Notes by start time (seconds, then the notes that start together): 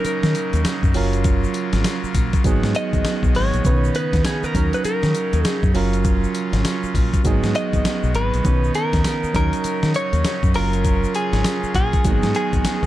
Already playing: C#3 F#3 A#3 C#4 D#4 A#4
0.05 A#4, muted fingered electric bass stroke, closed hi-hat, tambourine, shaker
0.23 D#3, snare, shaker
0.35 closed hi-hat, tambourine, shaker
0.53 D#2, closed hi-hat, shaker
0.65 muted fingered electric bass stroke, snare, closed hi-hat, tambourine, shaker
0.83 F#2, kick, shaker
0.94 F#1 C#3 F#3 C#4 F4 A#4, open hi-hat, tambourine
1.13 closed hi-hat, shaker
1.24 kick, closed hi-hat, shaker
1.44 shaker
1.54 closed hi-hat, tambourine
1.73 G#1, snare, closed hi-hat, shaker
1.84 snare, closed hi-hat, tambourine, shaker
2.04 muted fingered electric bass stroke, shaker
2.15 A#1, kick, closed hi-hat, tambourine, shaker
2.33 kick, closed hi-hat, shaker
2.44 G#1 D#3 F#3 G#3 B3 D#4 F#4 G#4, kick, closed hi-hat, tambourine, shaker
2.63 G#2, snare, shaker
2.75 D#5, closed hi-hat, tambourine, shaker
2.93 G#1, kick, closed hi-hat, shaker
3.05 snare, closed hi-hat, tambourine, shaker
3.23 B1, kick, shaker
3.35 G#1 C#5, open hi-hat, tambourine
3.53 A#1, closed hi-hat, shaker
3.65 B1 C#3 B3 C#4 D#4 B4, kick, closed hi-hat, shaker
3.72 D#3
3.84 shaker
3.95 B4, closed hi-hat, tambourine
4.13 D#2, kick, snare, closed hi-hat, shaker
4.25 G#4, snare, closed hi-hat, tambourine, shaker
4.43 A#4, muted fingered electric bass stroke, shaker
4.54 D#2 F#3 C#4 D#4 A#4, kick, closed hi-hat, tambourine, shaker
4.73 B4, closed hi-hat, shaker
4.85 A#4, muted fingered electric bass stroke, closed hi-hat, tambourine, shaker
5.03 D#3, snare, shaker
5.14 closed hi-hat, tambourine, shaker
5.33 D#2, closed hi-hat, shaker
5.44 G#4, muted fingered electric bass stroke, snare, closed hi-hat, tambourine, shaker
5.63 F#2, kick, shaker
5.74 F#1 F#3 C#4 F4 A#4, open hi-hat, tambourine
5.93 closed hi-hat, shaker
6.05 kick, closed hi-hat, shaker
6.24 shaker
6.34 closed hi-hat, tambourine
6.53 G#1, snare, closed hi-hat, shaker
6.65 snare, closed hi-hat, tambourine, shaker
6.83 muted fingered electric bass stroke, shaker
6.95 A#1, kick, open hi-hat, tambourine, shaker
7.14 kick, closed hi-hat, shaker
7.24 G#1 D#3 F#3 G#3 A#3 B3 D#4 F#4 G#4, kick, closed hi-hat, tambourine, shaker
7.31 B3
7.43 G#2, snare, shaker
7.55 D#5, closed hi-hat, tambourine, shaker
7.73 G#1, kick, closed hi-hat, shaker
7.85 snare, closed hi-hat, tambourine, shaker
8.03 B1, shaker
8.15 G#1 B4, closed hi-hat, tambourine
8.33 A#1, closed hi-hat, shaker
8.44 B1 C#3 D#3 B3 C#4 D#4 C#5, kick, closed hi-hat, shaker
8.64 shaker
8.74 A#4, closed hi-hat, tambourine
8.93 D#2, kick, snare, closed hi-hat, shaker
9.04 snare, closed hi-hat, tambourine, shaker
9.23 muted fingered electric bass stroke, shaker
9.34 D#2 F#3 C#4 D#4 A#4, kick, closed hi-hat, tambourine, shaker
9.53 closed hi-hat, shaker
9.64 muted fingered electric bass stroke, closed hi-hat, tambourine, shaker
9.83 D#3, snare, shaker
9.94 C#5, closed hi-hat, tambourine, shaker
10.13 D#2, closed hi-hat, shaker
10.25 snare, closed hi-hat, tambourine, shaker
10.43 F#2, kick, shaker
10.54 F#1 F#3 C#4 F4 A#4, open hi-hat, tambourine
10.73 closed hi-hat, shaker
10.85 kick, closed hi-hat, shaker
11.04 shaker
11.14 G#4, closed hi-hat, tambourine
11.33 G#1, snare, closed hi-hat, shaker
11.44 snare, closed hi-hat, tambourine, shaker
11.63 muted fingered electric bass stroke, shaker
11.75 A#1 G#4, kick, closed hi-hat, tambourine, shaker
11.93 kick, closed hi-hat, shaker
12.04 G#1 D#3 F#3 G#3 A#3 B3 D#4 F#4 G#4, kick, closed hi-hat, tambourine, shaker
12.11 B3
12.23 G#2, snare, shaker
12.35 G#4, closed hi-hat, tambourine, shaker
12.53 G#1, kick, closed hi-hat, shaker
12.65 snare, closed hi-hat, tambourine, shaker
12.83 B1, kick